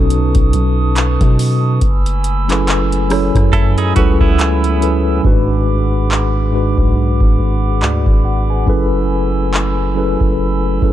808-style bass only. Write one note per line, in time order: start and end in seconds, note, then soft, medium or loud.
0.00 0.34 B1 loud
0.35 0.52 B1 loud
0.54 1.18 B1 loud
1.21 1.79 B2 loud
1.82 3.31 F#1 loud
3.35 3.94 F#2 loud
3.97 5.21 C#2 loud
5.25 6.74 G#1 loud
6.78 7.19 B1 loud
7.21 7.38 G#1 loud
7.39 7.84 G#1 loud
7.82 8.06 D2 medium
8.07 8.65 G#1 loud
8.68 10.17 F#1 loud
10.21 10.79 F#1 loud
10.82 10.93 F#1 loud